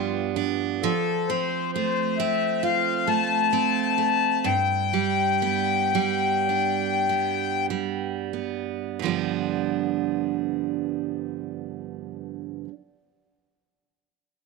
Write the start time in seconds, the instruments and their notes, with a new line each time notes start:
Already playing: steel-string acoustic guitar G2 G3 B3 D4, analog synth pad F3 B3 F4
0.36 steel-string acoustic guitar D4
0.83 steel-string acoustic guitar F3, accordion A4
1.29 steel-string acoustic guitar C4, accordion C5
1.73 steel-string acoustic guitar A3, accordion C5
2.18 steel-string acoustic guitar C4, accordion E5
2.63 steel-string acoustic guitar F4, accordion F5
3.07 steel-string acoustic guitar A3, accordion A5
3.53 steel-string acoustic guitar C4
3.98 steel-string acoustic guitar A3
4.44 steel-string acoustic guitar G2, accordion G5
4.93 steel-string acoustic guitar G3
5.42 steel-string acoustic guitar B3
5.95 steel-string acoustic guitar G3
6.49 steel-string acoustic guitar D4
7.09 steel-string acoustic guitar B3
7.70 steel-string acoustic guitar G3
8.33 steel-string acoustic guitar B3
8.99 steel-string acoustic guitar G2 D3 F3
9.05 steel-string acoustic guitar G3 B3 D4